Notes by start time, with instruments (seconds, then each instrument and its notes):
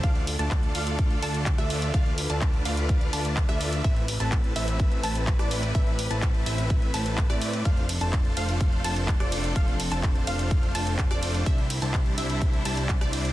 Already playing: string section D4
0.03 analog synth bass D2, string section D3 F4 A4, supersaw synth A3 D4 F4 D5 F5, synth pluck F5, kick, closed hi-hat
0.15 closed hi-hat
0.27 open hi-hat
0.39 analog synth bass D2, supersaw synth A3 D4 F4 D5 A5, synth pluck A5, closed hi-hat
0.51 kick, clap, closed hi-hat
0.63 closed hi-hat
0.75 analog synth bass D2, supersaw synth A3 D4 F4 D5 F5, synth pluck F5, open hi-hat
0.87 closed hi-hat
0.99 kick, closed hi-hat
1.11 closed hi-hat
1.23 analog synth bass D2, supersaw synth A3 D4 F4 D5 A5, synth pluck A5, open hi-hat
1.34 closed hi-hat
1.46 kick, clap, closed hi-hat
1.58 analog synth bass D2, supersaw synth A3 D4 F4 D5 E5, synth pluck E5, cross-stick, closed hi-hat
1.70 open hi-hat
1.82 closed hi-hat
1.94 analog synth bass D2, supersaw synth A3 D4 F4 D5 F5, string section B4, synth pluck F5, kick, closed hi-hat
2.06 closed hi-hat
2.18 open hi-hat
2.30 analog synth bass D2, supersaw synth A3 D4 F4 D5 A5, synth pluck A5, closed hi-hat
2.41 kick, clap, closed hi-hat
2.54 closed hi-hat
2.65 analog synth bass D2, supersaw synth A3 D4 F4 D5 F5, synth pluck F5, open hi-hat
2.77 closed hi-hat
2.89 kick, closed hi-hat
3.01 closed hi-hat
3.13 analog synth bass D2, supersaw synth A3 D4 F4 D5 A5, synth pluck A5, open hi-hat
3.25 closed hi-hat
3.37 kick, clap, closed hi-hat
3.49 analog synth bass D2, supersaw synth A3 D4 F4 D5 E5, synth pluck E5, cross-stick, closed hi-hat
3.61 open hi-hat
3.73 closed hi-hat
3.84 analog synth bass A1, string section C3 A3 B4, supersaw synth A3 C4 E4 B4 E5, synth pluck E5, kick, closed hi-hat
3.96 closed hi-hat
4.08 open hi-hat
4.20 analog synth bass A1, supersaw synth A3 C4 E4 B4 A5, synth pluck A5, closed hi-hat
4.32 kick, clap, closed hi-hat
4.44 closed hi-hat
4.56 analog synth bass A1, supersaw synth A3 C4 E4 B4 E5, synth pluck E5, open hi-hat
4.68 closed hi-hat
4.80 kick, closed hi-hat
4.92 closed hi-hat
5.03 analog synth bass A1, supersaw synth A3 C4 E4 B4 A5, synth pluck A5, open hi-hat
5.15 closed hi-hat
5.27 kick, clap, closed hi-hat
5.39 analog synth bass A1, supersaw synth A3 C4 E4 B4 D5, synth pluck D5, cross-stick, closed hi-hat
5.51 open hi-hat
5.63 closed hi-hat
5.75 analog synth bass A1, supersaw synth A3 C4 E4 B4 E5, synth pluck E5, kick, closed hi-hat
5.87 closed hi-hat
5.99 open hi-hat
6.11 analog synth bass A1, supersaw synth A3 C4 E4 B4 A5, synth pluck A5, closed hi-hat
6.22 kick, clap, closed hi-hat
6.34 closed hi-hat
6.46 analog synth bass A1, supersaw synth A3 C4 E4 B4 E5, synth pluck E5, open hi-hat
6.58 closed hi-hat
6.70 kick, closed hi-hat
6.82 closed hi-hat
6.94 analog synth bass A1, supersaw synth A3 C4 E4 B4 A5, synth pluck A5, open hi-hat
7.06 closed hi-hat
7.18 kick, clap, closed hi-hat
7.30 analog synth bass A2, supersaw synth A3 C4 E4 B4 D5, synth pluck D5, cross-stick, closed hi-hat
7.42 open hi-hat
7.53 closed hi-hat
7.65 analog synth bass F1, string section F3 C4 D4 A4, supersaw synth A3 D4 F4 C5 F5, synth pluck F5, kick, closed hi-hat
7.77 closed hi-hat
7.89 open hi-hat, ride
8.01 analog synth bass F1, supersaw synth A3 D4 F4 C5 A5, synth pluck A5, closed hi-hat
8.13 kick, clap, closed hi-hat
8.25 closed hi-hat
8.37 analog synth bass F1, supersaw synth A3 D4 F4 C5 F5, synth pluck F5, open hi-hat, ride
8.49 closed hi-hat
8.61 kick, closed hi-hat
8.73 closed hi-hat
8.84 analog synth bass F1, supersaw synth A3 D4 F4 C5 A5, synth pluck A5, open hi-hat, ride
8.96 closed hi-hat
9.08 kick, clap, closed hi-hat
9.20 analog synth bass F1, supersaw synth A3 D4 F4 C5 D5, synth pluck D5, cross-stick, closed hi-hat
9.32 open hi-hat, ride
9.44 closed hi-hat
9.56 analog synth bass F1, supersaw synth A3 D4 F4 C5 F5, synth pluck F5, kick, closed hi-hat
9.68 closed hi-hat
9.80 open hi-hat, ride
9.91 analog synth bass F1, supersaw synth A3 D4 F4 C5 A5, synth pluck A5, closed hi-hat
10.03 kick, clap, closed hi-hat
10.15 closed hi-hat
10.27 analog synth bass F1, supersaw synth A3 D4 F4 C5 F5, synth pluck F5, open hi-hat, ride
10.39 closed hi-hat
10.51 kick, closed hi-hat
10.63 closed hi-hat
10.75 analog synth bass F1, supersaw synth A3 D4 F4 C5 A5, synth pluck A5, open hi-hat, ride
10.87 closed hi-hat
10.99 kick, clap, closed hi-hat
11.11 analog synth bass F1, supersaw synth A3 D4 F4 C5 D5, synth pluck D5, cross-stick, closed hi-hat
11.23 open hi-hat, ride
11.35 closed hi-hat
11.46 analog synth bass C2, string section C3 D4 E4, supersaw synth G3 D4 E4 C5 E5, synth pluck E5, kick, closed hi-hat
11.58 closed hi-hat
11.70 open hi-hat, ride
11.82 analog synth bass C2, supersaw synth G3 D4 E4 C5 A5, synth pluck A5, closed hi-hat
11.94 kick, clap, closed hi-hat
12.06 closed hi-hat
12.18 analog synth bass C2, supersaw synth G3 D4 E4 C5 E5, synth pluck E5, open hi-hat, ride
12.30 closed hi-hat
12.42 kick, closed hi-hat
12.53 closed hi-hat
12.65 analog synth bass C2, supersaw synth G3 D4 E4 C5 A5, synth pluck A5, open hi-hat, ride
12.77 closed hi-hat
12.89 kick, clap, closed hi-hat
13.01 analog synth bass C2, supersaw synth G3 D4 E4 C5 D5, synth pluck D5, cross-stick, closed hi-hat
13.13 open hi-hat, ride
13.25 closed hi-hat